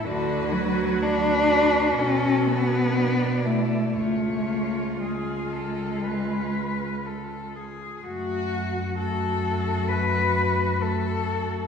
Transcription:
X:1
M:4/4
L:1/8
Q:1/4=62
K:F#m
V:1 name="Cello"
B2 B2 A2 d2 | c2 G A B2 A G | F2 A2 B2 A2 |]
V:2 name="Cello"
F4 F2 D E | ^E8 | F2 F4 F2 |]
V:3 name="Cello"
D, F, D2 C B,2 A, | A,2 G,4- G, z | A,2 A,4 A,2 |]
V:4 name="Cello" clef=bass
D,,4 B,,4 | C,,8 | F,,8 |]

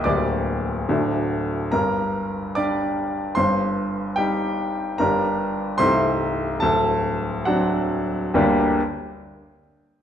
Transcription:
X:1
M:6/8
L:1/8
Q:3/8=72
K:Gm
V:1 name="Grand piano"
[dd']4- [dd'] z | [Bb]3 [dd']3 | [cc']3 [Gg]3 | [Bb]3 [cc']3 |
[Aa]3 [^F^f]3 | [G,,,D,,G,B,DGg] z4 z |]
V:2 name="Grand piano" clef=bass
[D,,,D,,G,B,G]3 [D,,,D,,A,D^F]3 | [G,,,G,,]3 [G,DG]3 | [G,,,G,,]3 [G,E]3 | [G,,,G,,G,DG]3 [C,,,C,,A,CE]3 |
[D,,,D,,]3 [^F,CD]3 | z6 |]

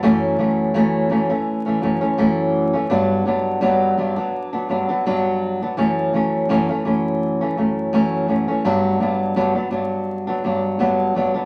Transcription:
X:1
M:4/4
L:1/16
Q:"Swing 16ths" 1/4=84
K:F#phr
V:1 name="Nylon-string guitar"
[F,,E,A,C]2 [F,,E,A,C]2 [F,,E,A,C]2 [F,,E,A,C] [E,A,C]2 [E,A,C] [F,,E,A,C] [E,A,C] [F,,E,A,C]3 [E,A,C] | [G,,F,B,D]2 [G,,F,B,D]2 [G,,F,B,D]2 [G,,F,B,D] [F,B,D]2 [F,B,D] [G,,F,B,D] [F,B,D] [G,,F,B,D]3 [F,B,D] | [F,,E,A,C]2 [F,,E,A,C]2 [F,,E,A,C] [E,A,C] [F,,E,A,C]3 [E,A,C] [F,,E,A,C]2 [F,,E,A,C]2 [F,,E,A,C] [E,A,C] | [G,,F,B,D]2 [G,,F,B,D]2 [G,,F,B,D] [F,B,D] [G,,F,B,D]3 [F,B,D] [G,,F,B,D]2 [G,,F,B,D]2 [G,,F,B,D] [F,B,D] |]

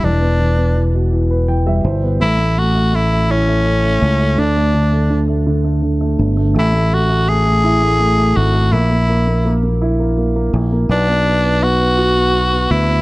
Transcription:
X:1
M:6/8
L:1/16
Q:3/8=55
K:Dmix
V:1 name="Tenor saxophone"
D4 z8 | E2 F2 E2 ^C6 | D4 z8 | [K:Bdor] E2 F2 G6 F2 |
E4 z8 | D4 F6 E2 |]
V:2 name="Grand piano"
z8 g e c2 | z12 | z12 | [K:Bdor] z12 |
z12 | z12 |]
V:3 name="Grand piano"
E, B, E, B, E, B,, E, B E, G, E, B, | A, A, A, A, A, A, E A, A, A, A, A, | D, A, D, A, D, A, D, A, D, A, D, A, | [K:Bdor] A, A, A, A, A, A, E A, A, A, A, A, |
_B, B, B, B, B, B, E B, B, B, B, B, | B, B, B, B, B, B, F B, B, B, B, B, |]
V:4 name="Fingered electric bass" clef=bass
E,,,8- E,,,2 G,,,2 | A,,,8- A,,,2 ^C,,2 | D,,8- D,,2 G,,,2 | [K:Bdor] A,,,8- A,,,2 G,,,2 |
_B,,,8- B,,,2 B,,,2 | B,,,8- B,,,2 D,,2 |]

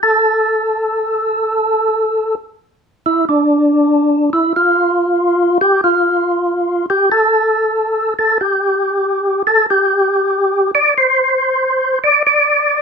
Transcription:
X:1
M:4/4
L:1/8
Q:"Swing" 1/4=94
K:Dm
V:1 name="Tonewheel organ"
A6- A z | z E D3 E F2- | F G F3 G A2- | A A G3 A G2- |
G d c3 d d2 |]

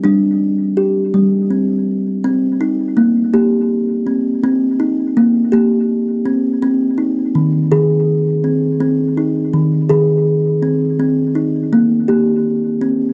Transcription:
X:1
M:6/8
L:1/8
Q:3/8=55
K:Eb
V:1 name="Kalimba"
D2 G2 C2 | z E2 G2 C | z E2 G2 z | z E2 A2 C |
z E2 A2 C | z E2 G2 C |]
V:2 name="Kalimba"
G,3 G,3 | C2 B, B,2 z | C2 B, B,2 C | C2 E, E,2 z |
C2 E, E,2 z | C2 B, B,2 z |]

